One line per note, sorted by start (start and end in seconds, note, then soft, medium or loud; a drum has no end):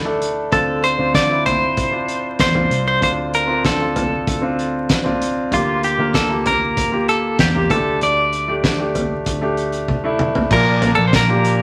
0.00 0.49 D2 medium
0.00 0.04 A3 medium
0.00 0.05 D4 medium
0.00 0.54 E4 medium
0.00 0.55 G4 medium
0.00 0.18 A4 medium
0.04 0.45 A3 medium
0.04 0.46 D4 medium
0.04 0.46 A4 medium
0.22 closed hi-hat medium
0.52 0.96 D2 medium
0.52 1.42 D3 medium
0.52 0.92 C4 medium
0.52 0.93 D4 medium
0.52 0.93 F4 medium
0.52 0.85 A4 medium
0.52 kick medium
0.52 closed hi-hat medium
0.84 1.15 C5 medium
0.84 closed hi-hat medium
0.98 1.14 D2 medium
0.98 1.26 C4 medium
0.98 1.26 D4 medium
0.98 1.26 F4 medium
1.14 2.40 D2 medium
1.14 1.46 D5 medium
1.14 kick medium
1.14 snare medium
1.14 closed hi-hat medium
1.30 1.84 C4 medium
1.30 1.84 D4 medium
1.30 1.84 E4 medium
1.46 2.39 C5 medium
1.46 closed hi-hat medium
1.46 floor tom medium
1.77 kick medium
1.77 closed hi-hat medium
1.91 2.46 C4 medium
1.91 2.46 D4 medium
1.91 2.47 F4 medium
2.08 closed hi-hat soft
2.39 2.69 E2 medium
2.39 2.86 C5 medium
2.39 kick medium
2.39 snare medium
2.39 closed hi-hat medium
2.55 2.95 C4 medium
2.55 2.96 D4 medium
2.55 2.96 F4 medium
2.55 floor tom medium
2.71 3.00 C2 medium
2.71 closed hi-hat medium
2.88 3.02 C5 medium
3.01 3.61 D2 medium
3.01 3.91 D3 medium
3.01 3.42 C4 medium
3.01 3.42 D4 medium
3.01 3.42 F4 medium
3.01 3.12 C5 medium
3.01 kick medium
3.01 closed hi-hat medium
3.33 3.65 A#4 medium
3.33 closed hi-hat medium
3.47 3.75 C4 medium
3.47 3.75 D4 medium
3.47 3.76 F4 medium
3.64 4.23 D2 medium
3.64 5.17 A4 medium
3.64 kick medium
3.64 snare medium
3.64 closed hi-hat medium
3.80 4.33 C4 medium
3.80 4.34 D4 medium
3.80 4.34 F4 medium
3.96 closed hi-hat medium
3.96 floor tom medium
4.27 5.48 D2 medium
4.27 kick loud
4.27 closed hi-hat medium
4.42 4.96 C4 medium
4.42 4.96 D4 medium
4.42 4.96 F4 medium
4.59 closed hi-hat soft
4.89 kick medium
4.89 snare medium
4.89 closed hi-hat medium
5.04 5.44 C4 medium
5.04 5.45 D4 medium
5.04 5.45 F4 medium
5.04 floor tom medium
5.22 closed hi-hat medium
5.51 5.95 D2 medium
5.51 6.42 D3 medium
5.51 5.92 A#3 medium
5.51 5.92 F4 medium
5.51 5.84 F4 medium
5.51 5.93 G4 medium
5.51 kick medium
5.51 closed hi-hat medium
5.83 6.16 G4 medium
5.83 closed hi-hat medium
5.98 6.13 D2 medium
5.98 6.25 A#3 medium
5.98 6.26 F4 medium
5.98 6.26 A#4 medium
6.14 7.35 D2 medium
6.14 6.47 A4 medium
6.14 kick medium
6.14 snare medium
6.14 closed hi-hat medium
6.29 6.83 A#3 medium
6.29 6.83 F4 medium
6.29 6.84 G4 medium
6.46 7.09 A#4 medium
6.46 closed hi-hat medium
6.46 floor tom medium
6.77 kick medium
6.77 closed hi-hat medium
6.92 7.45 A#3 medium
6.92 7.46 F4 medium
6.92 7.46 G4 medium
7.08 7.37 A4 medium
7.08 closed hi-hat soft
7.39 7.68 E2 medium
7.39 7.72 G4 medium
7.39 kick loud
7.39 snare loud
7.39 closed hi-hat medium
7.54 7.70 A#3 medium
7.54 7.70 F4 medium
7.54 7.70 G4 medium
7.54 floor tom medium
7.70 7.99 D2 medium
7.70 8.60 D3 soft
7.70 8.37 A3 medium
7.70 8.37 D4 medium
7.70 8.38 G4 medium
7.70 7.99 A4 medium
7.70 kick medium
7.70 closed hi-hat medium
7.70 floor tom medium
8.01 8.60 D2 medium
8.01 9.85 D5 medium
8.01 closed hi-hat medium
8.33 closed hi-hat medium
8.48 8.75 A3 medium
8.48 8.75 D4 medium
8.48 8.75 G4 medium
8.64 9.22 D2 medium
8.64 kick medium
8.64 snare medium
8.64 closed hi-hat medium
8.78 9.32 A3 medium
8.78 9.33 D4 medium
8.78 9.33 G4 medium
8.95 closed hi-hat medium
8.95 floor tom medium
9.26 10.47 D2 medium
9.26 kick medium
9.26 closed hi-hat medium
9.41 9.95 A3 medium
9.41 9.95 D4 medium
9.41 9.96 G4 medium
9.57 closed hi-hat soft
9.72 closed hi-hat soft
9.88 kick medium
9.88 high tom soft
10.04 10.44 A3 medium
10.04 10.44 D4 medium
10.04 10.45 E4 medium
10.19 mid tom medium
10.35 floor tom medium
10.50 10.94 A#1 loud
10.50 11.40 A#2 medium
10.50 10.77 A#3 medium
10.50 10.78 D4 medium
10.50 10.78 F4 medium
10.50 10.78 A#4 medium
10.50 10.90 A#4 loud
10.50 kick loud
10.50 crash medium
10.81 11.22 A#3 medium
10.81 11.22 D4 medium
10.81 11.22 F4 medium
10.81 11.23 A#4 medium
10.81 closed hi-hat medium
10.81 floor tom medium
10.95 11.12 A#1 medium
10.95 11.07 A4 medium
11.08 11.14 C5 medium
11.13 11.62 A#1 loud
11.13 11.62 A#4 loud
11.13 kick loud
11.13 snare medium
11.13 closed hi-hat medium
11.28 11.62 A#3 medium
11.28 11.62 D4 medium
11.28 11.62 F4 medium
11.28 11.62 G4 medium
11.45 closed hi-hat medium